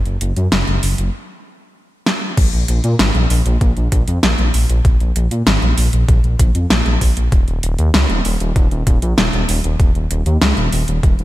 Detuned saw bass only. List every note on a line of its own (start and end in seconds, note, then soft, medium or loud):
0.06 0.17 F#1 medium
0.21 0.32 F#1 medium
0.37 0.48 F#2 medium
0.52 0.63 F#1 loud
0.68 0.79 F#1 medium
0.83 0.94 F#1 loud
0.98 1.10 F#1 medium
2.37 2.49 A#1 loud
2.53 2.64 A#1 medium
2.68 2.80 A#1 loud
2.84 2.95 A#2 medium
2.99 3.10 G#1 loud
3.15 3.26 A#1 medium
3.30 3.41 A#1 loud
3.46 3.57 A#1 medium
3.61 3.72 A#1 loud
3.77 3.88 A#1 medium
3.92 4.03 A#1 loud
4.08 4.19 F2 medium
4.23 4.34 A#1 loud
4.38 4.50 A#1 medium
4.54 4.65 A#1 loud
4.69 4.81 A#1 medium
4.85 4.96 A#1 loud
5.00 5.11 A#1 medium
5.16 5.27 A#1 loud
5.31 5.42 A#2 medium
5.47 5.58 G#1 loud
5.62 5.73 A#1 medium
5.77 5.89 A#1 loud
5.93 6.04 A#1 medium
6.09 6.20 A#1 loud
6.24 6.35 A#1 medium
6.39 6.51 A#1 loud
6.55 6.66 F2 medium
6.70 6.82 A#1 loud
6.86 6.97 A#1 medium
7.01 7.12 A#1 medium
7.17 7.28 A#1 medium
7.32 7.43 D#1 loud
7.48 7.59 D#1 medium
7.63 7.74 D#1 loud
7.78 7.90 D#2 medium
7.94 8.05 C#2 loud
8.09 8.21 D#1 medium
8.25 8.36 D#1 loud
8.40 8.52 D#1 medium
8.56 8.67 D#1 loud
8.71 8.83 D#1 medium
8.87 8.98 D#1 loud
9.02 9.14 A#1 medium
9.18 9.29 D#1 loud
9.33 9.44 D#1 medium
9.49 9.60 D#1 loud
9.64 9.75 D#1 medium
9.80 9.91 D#1 loud
9.95 10.06 D#1 medium
10.11 10.22 D#1 loud
10.26 10.37 D#2 medium
10.41 10.53 C#2 loud
10.57 10.68 D#1 medium
10.72 10.84 D#1 loud
10.88 10.99 D#1 medium
11.03 11.15 D#1 loud
11.19 11.24 D#1 medium